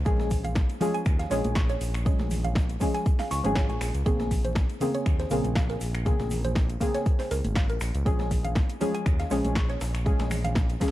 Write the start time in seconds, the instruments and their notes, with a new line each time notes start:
0.05 analog synth bass A#1, synth stab F3 G#3 C#4 G#4, synth arpeggio sound G#4, kick, closed hi-hat, shaker
0.20 snare, high conga, shaker
0.30 kick, closed hi-hat, open hi-hat, low conga, shaker
0.44 synth arpeggio sound F5, closed hi-hat, low conga, shaker
0.55 kick, snare, closed hi-hat, shaker
0.70 closed hi-hat, shaker
0.80 synth stab F3 G#3 C#4 G#4, closed hi-hat, open hi-hat, high conga, low conga, shaker
0.94 synth arpeggio sound G#5, closed hi-hat, shaker
1.06 analog synth bass D#2, finger snap, kick, closed hi-hat, shaker
1.19 synth arpeggio sound F5, snare, closed hi-hat, shaker
1.30 analog synth bass A#1, synth stab F3 G#3 C#4 G#4, synth arpeggio sound C#5, closed hi-hat, open hi-hat, shaker
1.44 analog synth bass A#1, closed hi-hat, high conga, shaker
1.55 synth arpeggio sound C#6, kick, snare, closed hi-hat, shaker
1.69 synth arpeggio sound C#5, snare, closed hi-hat, shaker
1.81 analog synth bass A#1, closed hi-hat, open hi-hat, shaker
1.94 finger snap, closed hi-hat, shaker
2.05 synth stab F3 G#3 C#4 G#4, synth arpeggio sound G#4, kick, closed hi-hat, shaker
2.19 analog synth bass A#1, snare, high conga, shaker
2.30 open hi-hat, low conga, shaker
2.44 synth arpeggio sound F5, closed hi-hat, low conga, shaker
2.55 kick, snare, closed hi-hat, shaker
2.69 closed hi-hat, shaker
2.80 synth stab F3 G#3 C#4 G#4, kick, closed hi-hat, open hi-hat, high conga, low conga, shaker
2.94 synth arpeggio sound G#5, snare, closed hi-hat, shaker
3.06 kick, closed hi-hat, shaker
3.19 synth arpeggio sound F5, snare, open hi-hat, shaker
3.31 analog synth bass C#2, synth arpeggio sound C#6, snare, closed hi-hat, open hi-hat, shaker
3.43 analog synth bass G#1, synth stab F3 G#3 C#4 G#4, closed hi-hat, high conga, shaker
3.55 synth arpeggio sound C#5, finger snap, kick, snare, closed hi-hat, shaker
3.69 analog synth bass A#1, synth arpeggio sound G#5, closed hi-hat, shaker
3.81 analog synth bass A#1, finger snap, snare, closed hi-hat, open hi-hat, shaker
3.94 analog synth bass C#2, closed hi-hat, shaker
4.05 analog synth bass A#1, synth stab C#3 A#3 C4 G#4, synth arpeggio sound G#4, kick, closed hi-hat, shaker
4.20 snare, high conga, shaker
4.31 kick, closed hi-hat, open hi-hat, low conga, shaker
4.45 synth arpeggio sound C5, closed hi-hat, low conga, shaker
4.55 kick, snare, closed hi-hat, shaker
4.70 closed hi-hat, shaker
4.80 synth stab C#3 A#3 C4 G#4, closed hi-hat, open hi-hat, high conga, low conga, shaker
4.95 synth arpeggio sound C#5, closed hi-hat, shaker
5.06 analog synth bass D#2, finger snap, kick, closed hi-hat, shaker
5.20 synth arpeggio sound C5, snare, closed hi-hat, shaker
5.30 analog synth bass A#1, synth stab C#3 A#3 C4 G#4, synth arpeggio sound A#4, closed hi-hat, open hi-hat, shaker
5.44 analog synth bass A#1, closed hi-hat, high conga, shaker
5.55 synth arpeggio sound F5, kick, snare, closed hi-hat, shaker
5.70 synth arpeggio sound A#4, snare, closed hi-hat, shaker
5.81 analog synth bass A#1, closed hi-hat, open hi-hat, shaker
5.94 finger snap, closed hi-hat, shaker
6.05 synth stab C#3 A#3 C4 G#4, synth arpeggio sound G#4, kick, closed hi-hat, shaker
6.20 analog synth bass A#1, snare, high conga, shaker
6.30 open hi-hat, low conga, shaker
6.45 synth arpeggio sound C5, closed hi-hat, low conga, shaker
6.55 kick, snare, closed hi-hat, shaker
6.70 closed hi-hat, shaker
6.80 synth stab C#3 A#3 C4 G#4, kick, closed hi-hat, open hi-hat, high conga, low conga, shaker
6.94 synth arpeggio sound C#5, snare, closed hi-hat, shaker
7.06 kick, closed hi-hat, shaker
7.19 synth arpeggio sound C5, snare, open hi-hat, shaker
7.31 analog synth bass C#2, synth arpeggio sound A#4, snare, closed hi-hat, open hi-hat, shaker
7.44 analog synth bass G#1, closed hi-hat, high conga, shaker
7.55 synth arpeggio sound F5, finger snap, kick, snare, closed hi-hat, shaker
7.69 analog synth bass A#1, synth arpeggio sound A#4, closed hi-hat, shaker
7.81 analog synth bass A#1, finger snap, snare, closed hi-hat, open hi-hat, shaker
7.94 analog synth bass C#2, closed hi-hat, shaker
8.05 analog synth bass A#1, synth stab F3 G#3 C#4 G#4, synth arpeggio sound G#4, kick, closed hi-hat, shaker
8.19 snare, high conga, shaker
8.31 kick, closed hi-hat, open hi-hat, low conga, shaker
8.44 synth arpeggio sound F5, closed hi-hat, low conga, shaker
8.55 kick, snare, closed hi-hat, shaker
8.69 closed hi-hat, shaker
8.81 synth stab F3 G#3 C#4 G#4, closed hi-hat, open hi-hat, high conga, low conga, shaker
8.94 synth arpeggio sound G#5, closed hi-hat, shaker
9.06 analog synth bass D#2, finger snap, kick, closed hi-hat, shaker
9.20 synth arpeggio sound F5, snare, closed hi-hat, shaker
9.30 analog synth bass A#1, synth stab F3 G#3 C#4 G#4, synth arpeggio sound C#5, closed hi-hat, open hi-hat, shaker
9.44 analog synth bass A#1, closed hi-hat, high conga, shaker
9.55 synth arpeggio sound C#6, kick, snare, closed hi-hat, shaker
9.69 synth arpeggio sound C#5, snare, closed hi-hat, shaker
9.81 analog synth bass A#1, snare, closed hi-hat, open hi-hat, shaker
9.95 finger snap, snare, closed hi-hat, shaker
10.05 synth stab F3 G#3 C#4 G#4, synth arpeggio sound G#4, kick, closed hi-hat, shaker
10.19 analog synth bass A#1, snare, closed hi-hat, high conga, shaker
10.31 finger snap, snare, open hi-hat, low conga, shaker
10.44 synth arpeggio sound F5, closed hi-hat, low conga, shaker
10.55 kick, snare, closed hi-hat, shaker
10.69 closed hi-hat, shaker
10.80 synth stab F3 G#3 C#4 G#4, kick, snare, closed hi-hat, open hi-hat, high conga, low conga, shaker
10.88 snare, closed hi-hat